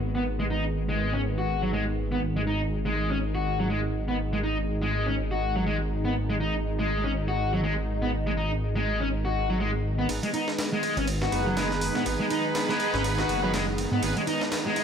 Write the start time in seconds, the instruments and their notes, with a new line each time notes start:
Already playing: detuned saw bass G#1, analog synth pad D#3 G#3 B3
0.15 distorted electric guitar B3
0.39 distorted electric guitar G#3
0.50 distorted electric guitar D#4
0.89 distorted electric guitar G#3
1.13 distorted electric guitar C#4
1.38 distorted electric guitar F#4
1.62 distorted electric guitar F#3
1.73 distorted electric guitar G#3
2.12 distorted electric guitar B3
2.22 detuned saw bass G#1, analog synth pad D#4
2.36 distorted electric guitar G#3
2.47 distorted electric guitar D#4
2.86 distorted electric guitar G#3
3.10 distorted electric guitar C#4
3.35 distorted electric guitar F#4
3.60 distorted electric guitar F#3
3.70 distorted electric guitar G#3
4.08 distorted electric guitar B3
4.33 distorted electric guitar G#3
4.43 distorted electric guitar D#4
4.82 distorted electric guitar G#3
5.07 distorted electric guitar C#4
5.31 distorted electric guitar F#4
5.56 distorted electric guitar F#3
5.66 distorted electric guitar G#3
6.05 distorted electric guitar B3
6.30 distorted electric guitar G#3
6.40 distorted electric guitar D#4
6.79 distorted electric guitar G#3
7.04 distorted electric guitar C#4
7.28 distorted electric guitar F#4
7.53 distorted electric guitar F#3
7.63 distorted electric guitar G#3
8.02 distorted electric guitar B3
8.27 distorted electric guitar G#3
8.37 distorted electric guitar D#4
8.76 distorted electric guitar G#3
9.00 distorted electric guitar C#4
9.25 distorted electric guitar F#4
9.50 distorted electric guitar F#3
9.60 distorted electric guitar G#3
9.99 distorted electric guitar B3
10.09 detuned saw bass G#1, analog synth pad D#3 G#3 B3, horn section B3 D#4 G#4 B4, kick, ride, riser
10.23 distorted electric guitar G#3, ride
10.34 distorted electric guitar D#4, ride
10.48 snare
10.58 snare, ride
10.73 distorted electric guitar G#3
10.83 kick, ride
10.97 detuned saw bass G#1, distorted electric guitar C#4, ride
11.07 kick, ride
11.22 distorted electric guitar F#4, snare
11.32 detuned saw bass F#1, horn section B3 D#4 G#4 B4, ride
11.46 distorted electric guitar F#3
11.57 distorted electric guitar G#3, snare, ride
11.71 snare
11.81 open hi-hat
11.95 detuned saw bass G#2, distorted electric guitar B3, snare
12.06 detuned saw bass G#1, horn section B3 D#4 G#4 B4, kick, ride
12.20 distorted electric guitar G#3
12.30 distorted electric guitar D#4, ride
12.55 snare, ride
12.69 distorted electric guitar G#3, snare
12.80 kick, ride
12.94 detuned saw bass G#1, distorted electric guitar C#4, snare
13.04 kick, ride
13.18 distorted electric guitar F#4, snare
13.29 detuned saw bass F#1, ride
13.43 distorted electric guitar F#3, horn section B3 D#4 G#4 B4
13.54 distorted electric guitar G#3, snare, ride
13.78 ride
13.92 detuned saw bass G#2, distorted electric guitar B3
14.03 detuned saw bass G#1, horn section B3 D#4 G#4 B4, kick, ride
14.17 distorted electric guitar G#3, ride
14.27 distorted electric guitar D#4, ride
14.41 snare
14.52 snare, ride
14.66 distorted electric guitar G#3
14.76 kick, ride